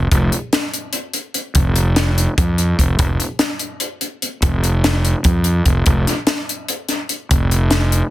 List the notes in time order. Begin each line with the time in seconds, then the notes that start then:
0.12 F1, kick, closed hi-hat
0.32 closed hi-hat
0.53 snare, closed hi-hat
0.74 closed hi-hat
0.93 closed hi-hat
1.13 closed hi-hat
1.34 closed hi-hat
1.55 F1, kick, closed hi-hat
1.76 closed hi-hat
1.96 snare, closed hi-hat
2.18 closed hi-hat
2.38 F2, kick, closed hi-hat
2.58 closed hi-hat
2.79 F1, kick, closed hi-hat
2.99 F1, kick, closed hi-hat
3.20 closed hi-hat
3.39 snare, closed hi-hat
3.59 closed hi-hat
3.80 closed hi-hat
4.01 closed hi-hat
4.22 closed hi-hat
4.42 F1, kick, closed hi-hat
4.64 closed hi-hat
4.84 snare, closed hi-hat
5.05 closed hi-hat
5.24 F2, kick, closed hi-hat
5.44 closed hi-hat
5.66 F1, kick, closed hi-hat
5.86 F1, kick, closed hi-hat
6.07 snare, closed hi-hat
6.27 snare, closed hi-hat
6.49 closed hi-hat
6.68 closed hi-hat
6.89 snare, closed hi-hat
7.09 closed hi-hat
7.31 F1, kick, closed hi-hat
7.51 closed hi-hat
7.71 snare, closed hi-hat
7.92 closed hi-hat